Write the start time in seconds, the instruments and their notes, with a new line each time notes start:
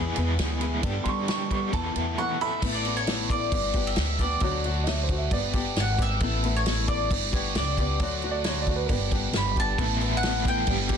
Already playing: upright bass E2, overdriven electric guitar E2 B2 E3 G#3 B3 G#4, steel-string acoustic guitar E3 B3 E4 G#4
0.16 upright bass E2, steel-string acoustic guitar B3 E4 G#4, ride
0.38 upright bass D2, steel-string acoustic guitar E3 B3 E4 G#4, snare, ride
0.60 steel-string acoustic guitar B3 E4 G#4, ride
0.82 overdriven electric guitar G2 D3 G3 B3 D4 G4, upright bass G2, steel-string acoustic guitar G3 B3 D4 A4, kick, ride
1.04 upright bass G3, upright piano C6, kick, ride
1.09 upright piano C#6
1.28 upright piano C#6, snare, ride
1.49 overdriven electric guitar G2 D3 G3 B3 D4 G4, steel-string acoustic guitar B3 D4 A4, upright piano C#6, kick, ride
1.71 overdriven electric guitar E2 B2 E3 A3 B3 A4, upright bass E2, steel-string acoustic guitar E3 B3 E4 A4, upright piano A5, kick, ride
1.94 upright bass E2, steel-string acoustic guitar B3 E4 A4, ride
2.18 steel-string acoustic guitar E3 B3 E4 A4, mandolin F#5, upright piano C#6
2.39 overdriven electric guitar E2 B2 E3 A3 B3 A4, mandolin E5, upright piano B5
2.62 upright bass A1, steel-string acoustic guitar A3 B3 E4 A4, kick, crash
2.74 mandolin D5
2.85 steel-string acoustic guitar A3 B3 E4 A4, crash
2.97 mandolin C#5
3.07 steel-string acoustic guitar A3 B3 E4 A4, snare, crash
3.30 steel-string acoustic guitar B3 E4 A4, mandolin D5, kick, crash
3.51 upright bass G1, steel-string acoustic guitar G3 B3 D4 G4, kick, crash
3.73 steel-string acoustic guitar G3 B3 D4 G4, kick, crash
3.87 mandolin E5
3.96 upright bass D2, snare, crash
4.19 steel-string acoustic guitar G3 B3 D4 G4, mandolin D5, kick, crash
4.40 upright bass D2, steel-string acoustic guitar D3 F#3 A3 D4 F#4, kick, crash
4.64 steel-string acoustic guitar D3 F#3 A3 D4 F#4, crash
4.84 steel-string acoustic guitar D3 F#3 A3, upright piano D#5, snare, crash
4.88 steel-string acoustic guitar D4 F#4, upright piano E5
5.03 upright piano C5
5.09 steel-string acoustic guitar A3 D4 F#4, kick, crash
5.18 upright piano E5
5.31 upright bass G1, steel-string acoustic guitar G3 B3 D4 G4, upright piano D5, kick, crash
5.53 steel-string acoustic guitar G3 B3 D4 G4, kick, crash
5.76 upright bass G#1, mandolin F#5, snare, crash
5.98 steel-string acoustic guitar G3 B3 D4 G4, mandolin E5, kick, crash
6.20 upright bass A1, steel-string acoustic guitar A3 B3 E4 A4, kick, crash
6.43 steel-string acoustic guitar A3 B3 E4 A4, crash
6.57 mandolin C#5
6.65 steel-string acoustic guitar A3 B3 E4 A4, snare, crash
6.87 steel-string acoustic guitar B3 E4 A4, mandolin D5, kick, crash
7.10 upright bass G1, steel-string acoustic guitar G3 B3 D4 G4, kick, crash
7.32 steel-string acoustic guitar G3 B3 D4 G4, mandolin C#5, kick, crash
7.55 upright bass C#2, mandolin D5, snare, crash
7.78 steel-string acoustic guitar G3 B3 D4 G4, mandolin D5, kick, crash
7.99 upright bass D2, steel-string acoustic guitar D3 F#3 A3 D4 F#4, kick, crash
8.22 steel-string acoustic guitar D3 F#3 A3 D4 F#4, crash
8.31 upright piano D5
8.44 steel-string acoustic guitar D3 F#3 A3 D4 F#4, upright piano C#5, snare, crash
8.62 upright piano D5
8.67 steel-string acoustic guitar A3 D4 F#4, kick, crash
8.76 upright piano B4
8.86 upright bass G1, steel-string acoustic guitar G3, upright piano A#4, kick, crash
8.90 steel-string acoustic guitar B3 D4 G4, upright piano B4
9.11 steel-string acoustic guitar G3 B3 D4 G4, kick, crash
9.33 upright bass G1, snare, crash
9.37 mandolin B5
9.56 steel-string acoustic guitar G3 B3 D4 G4, mandolin A5, kick, crash
9.78 upright bass A1, overdriven electric guitar A2 E3 B3 E4 A4, steel-string acoustic guitar A3 B3 E4 A4, kick, crash
10.01 steel-string acoustic guitar A3 B3 E4 A4, crash
10.17 mandolin F#5
10.23 steel-string acoustic guitar A3 B3 E4 A4, snare, crash
10.45 steel-string acoustic guitar B3 E4 A4, mandolin G5, kick, crash
10.67 upright bass G1, overdriven electric guitar G2 D3 G3 B3 D4 G4, steel-string acoustic guitar G3 B3 D4 G4, kick, crash
10.89 steel-string acoustic guitar G3 B3 D4 G4, kick, crash